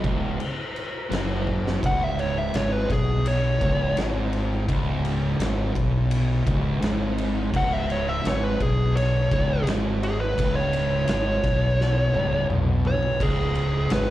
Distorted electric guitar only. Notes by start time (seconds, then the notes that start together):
0.03 C#2
1.10 F#2
1.83 C#2
2.54 G#2
2.90 B2
3.60 C#2
3.96 G#2
4.68 C#2
5.40 G#2
5.75 B2
6.46 C#2
6.81 G#2
7.53 C#2
8.24 G#2
8.61 B2
9.32 C#2
9.67 G#2
10.38 C#2
11.09 G#2
11.44 B2
12.15 C#2
12.50 B2
13.21 C#2
13.91 G#2